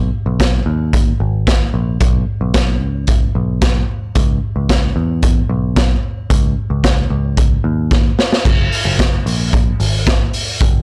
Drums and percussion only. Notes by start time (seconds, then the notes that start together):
0.40 kick, snare, closed hi-hat
0.93 kick, closed hi-hat
1.47 kick, snare, closed hi-hat
2.00 kick, closed hi-hat
2.54 kick, snare, closed hi-hat
3.07 kick, closed hi-hat
3.62 kick, snare, closed hi-hat
4.15 kick, closed hi-hat
4.69 kick, snare, closed hi-hat
5.23 kick, closed hi-hat
5.76 kick, snare, closed hi-hat
6.30 kick, closed hi-hat
6.84 kick, snare, closed hi-hat
7.37 kick, closed hi-hat
7.91 kick, snare
8.19 snare
8.32 snare
8.45 kick, crash
8.72 open hi-hat
8.99 kick, snare, closed hi-hat
9.26 open hi-hat
9.53 kick, closed hi-hat
9.80 open hi-hat
10.07 kick, snare, closed hi-hat
10.33 open hi-hat
10.60 kick, closed hi-hat